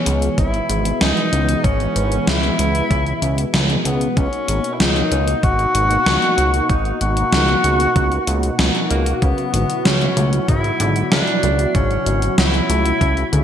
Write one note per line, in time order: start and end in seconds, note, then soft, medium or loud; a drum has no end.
0.00 13.44 B2 medium
0.00 4.13 E3 loud
0.00 4.13 G#3 medium
0.00 4.13 B3 medium
0.00 0.38 C#4 loud
0.06 0.29 C#2 loud
0.06 closed hi-hat loud
0.22 closed hi-hat medium
0.38 0.61 G#1 medium
0.38 0.97 E4 loud
0.38 kick loud
0.38 closed hi-hat medium
0.54 closed hi-hat soft
0.69 0.93 G#1 medium
0.69 closed hi-hat loud
0.85 closed hi-hat medium
1.01 1.13 C#2 loud
1.01 1.66 D#4 loud
1.01 snare loud
1.01 closed hi-hat medium
1.17 closed hi-hat soft
1.33 1.56 C#2 medium
1.33 closed hi-hat loud
1.49 closed hi-hat medium
1.64 1.87 G#1 loud
1.64 2.29 C#4 loud
1.64 kick loud
1.64 closed hi-hat medium
1.80 closed hi-hat soft
1.96 2.19 G#1 medium
1.96 closed hi-hat medium
2.12 closed hi-hat medium
2.27 2.51 C#2 medium
2.27 3.58 E4 loud
2.27 snare loud
2.27 closed hi-hat medium
2.43 closed hi-hat soft
2.59 2.82 C#2 medium
2.59 closed hi-hat loud
2.75 closed hi-hat medium
2.91 3.14 C#2 loud
2.91 kick loud
2.91 closed hi-hat medium
3.06 closed hi-hat soft
3.22 3.45 C#2 medium
3.22 closed hi-hat medium
3.38 closed hi-hat medium
3.54 3.77 C#2 loud
3.54 snare loud
3.54 closed hi-hat medium
3.70 closed hi-hat soft
3.85 4.08 C#2 medium
3.85 4.19 B3 medium
3.85 closed hi-hat medium
4.01 closed hi-hat medium
4.17 4.28 C#2 loud
4.17 9.18 A#3 medium
4.17 4.75 C#4 loud
4.17 9.18 D#4 medium
4.17 13.44 F#4 loud
4.17 kick loud
4.17 closed hi-hat medium
4.33 closed hi-hat soft
4.48 4.60 G#1 medium
4.48 closed hi-hat loud
4.64 closed hi-hat medium
4.73 4.82 E4 medium
4.80 5.03 C#2 medium
4.80 5.45 D#4 loud
4.80 snare loud
4.80 closed hi-hat medium
4.96 closed hi-hat soft
5.12 5.35 C#2 loud
5.12 closed hi-hat medium
5.28 closed hi-hat medium
5.43 5.66 G#1 medium
5.43 6.71 F#4 loud
5.43 kick loud
5.43 closed hi-hat medium
5.59 closed hi-hat soft
5.75 5.98 G#1 medium
5.75 closed hi-hat medium
5.91 closed hi-hat medium
6.06 6.18 C#2 loud
6.06 snare loud
6.06 closed hi-hat medium
6.22 closed hi-hat soft
6.38 6.61 C#2 medium
6.38 closed hi-hat medium
6.54 closed hi-hat medium
6.70 6.93 G#1 loud
6.70 7.01 D#4 loud
6.70 kick loud
6.70 closed hi-hat medium
6.85 closed hi-hat soft
7.01 7.24 G#1 medium
7.01 8.60 F#4 loud
7.01 closed hi-hat medium
7.17 closed hi-hat medium
7.33 7.56 C#2 medium
7.33 snare loud
7.33 closed hi-hat medium
7.48 closed hi-hat soft
7.64 7.87 C#2 medium
7.64 closed hi-hat medium
7.80 closed hi-hat medium
7.96 8.19 C#2 loud
7.96 kick loud
7.96 closed hi-hat medium
8.12 closed hi-hat soft
8.27 8.51 C#2 loud
8.27 closed hi-hat medium
8.43 closed hi-hat medium
8.59 8.71 C#2 loud
8.59 snare loud
8.59 closed hi-hat soft
8.75 closed hi-hat soft
8.91 9.14 C#2 medium
8.91 9.24 A#3 loud
8.91 closed hi-hat medium
9.06 closed hi-hat medium
9.22 9.34 C#2 loud
9.22 9.52 C#3 loud
9.22 13.44 F#3 medium
9.22 9.87 B3 loud
9.22 13.44 E4 medium
9.22 kick loud
9.22 closed hi-hat medium
9.38 closed hi-hat soft
9.54 9.65 G#1 medium
9.54 9.69 D3 medium
9.54 closed hi-hat medium
9.70 closed hi-hat soft
9.85 10.08 C#2 medium
9.85 10.10 F#3 medium
9.85 10.48 C#4 loud
9.85 snare loud
9.85 closed hi-hat medium
10.01 closed hi-hat soft
10.17 10.40 C#2 loud
10.17 10.42 A3 medium
10.17 closed hi-hat medium
10.33 closed hi-hat soft
10.48 10.72 G#1 medium
10.48 10.63 C#3 medium
10.48 11.08 E4 loud
10.48 kick loud
10.48 closed hi-hat medium
10.64 closed hi-hat soft
10.80 11.03 G#1 medium
10.80 10.95 D3 loud
10.80 closed hi-hat medium
10.96 closed hi-hat soft
11.12 11.23 C#2 loud
11.12 11.27 F#3 medium
11.12 11.76 D4 loud
11.12 snare loud
11.12 closed hi-hat soft
11.27 closed hi-hat soft
11.43 11.66 C#2 medium
11.43 11.68 A3 medium
11.43 closed hi-hat medium
11.59 closed hi-hat medium
11.75 11.98 G#1 loud
11.75 12.05 C#3 loud
11.75 12.37 C#4 loud
11.75 kick loud
11.75 closed hi-hat medium
11.91 closed hi-hat soft
12.06 12.29 G#1 medium
12.06 12.21 D3 medium
12.06 closed hi-hat medium
12.22 closed hi-hat soft
12.38 12.61 C#2 medium
12.38 12.63 F#3 medium
12.38 13.44 E4 loud
12.38 snare loud
12.38 closed hi-hat soft
12.54 closed hi-hat soft
12.69 12.93 C#2 medium
12.69 12.94 A3 medium
12.69 closed hi-hat medium
12.86 closed hi-hat soft
13.01 13.24 C#2 loud
13.01 13.16 C#3 medium
13.01 kick loud
13.01 closed hi-hat medium
13.17 closed hi-hat soft
13.33 13.44 C#2 medium
13.33 13.44 D3 loud
13.33 closed hi-hat medium